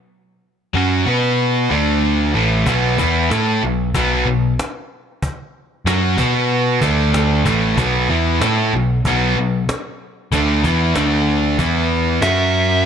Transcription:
0.74 F#2 F#3 C#4 F#4
1.05 B2 B3 F#4 B4
1.69 D2 D3 A3 D4
2.35 A1 A2 E3 A3
2.66 B1 B2 F#3 B3, cajon bass
2.98 E2 E3 B3 E4, cajon bass
3.30 A2 A3 E4 A4, cajon slap
3.63 B1 B2 F#3
3.94 B1 B2 F#3 B3, cajon bass
4.26 B1 B2 F#3
4.59 cajon slap
5.22 cajon bass
5.85 F#2 F#3 C#4 F#4, cajon slap
6.17 B2 B3 F#4 B4, cajon bass
6.81 D2 D3 A3 D4, cajon bass
7.14 cajon slap
7.44 A1 A2 E3 A3, cajon bass
7.77 B1 B2 F#3 B3, cajon bass
8.09 E2 E3 B3 E4
8.40 A2 A3 E4 A4, cajon slap
8.73 B1 B2 F#3
9.05 B1 B2 F#3 B3, cajon bass
9.37 B1 B2 F#3
9.69 cajon slap
10.32 D2 D3 A3 D4, cajon bass
10.63 E2 E3 B3 E4, cajon bass
10.95 D2 D3 A3 D4, cajon slap
11.59 E2 E3 B3 E4, cajon bass
12.22 F#2 F#3 C#4 F#4 E5, cajon slap

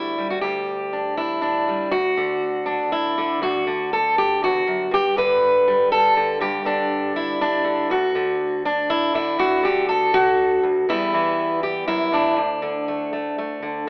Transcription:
Already playing: D2 G3 D4 E4
0.18 G3
0.30 F#4
0.41 D2 G4
0.93 D4
1.17 D4 E4
1.41 D4
1.68 G3
1.91 D2 F#4
2.17 D3
2.66 D4
2.92 E4
3.18 D3
3.42 D2 F#4
3.67 D3
3.93 A4
4.18 G4
4.43 E2 F#4
4.67 F#2
4.91 G2 G4
5.17 D3 B4
5.68 G3
5.92 A4
6.17 D3
6.40 G2 G4
6.65 D3 D4
7.16 E4
7.41 D4
7.64 D3
7.90 D2 F#4
8.15 D3
8.65 D4
8.90 E4
9.14 D3 E4
9.39 D2 F#4
9.63 D3 G4
9.89 A4
10.14 F#4
10.63 D2
10.89 E2 E3 G3 B3 E4
11.14 E3
11.63 G4
11.87 F#2 E4
12.12 E2 D4
12.36 D2
12.62 D3
12.88 A3
13.13 A3
13.38 A3
13.62 D3

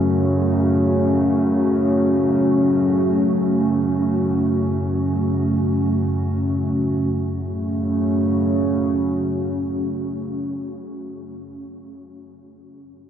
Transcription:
Already playing: F#2 C#3 A3 C#4 F#4
7.13 F#2 C#3 A3
7.30 C#4
7.43 F#4

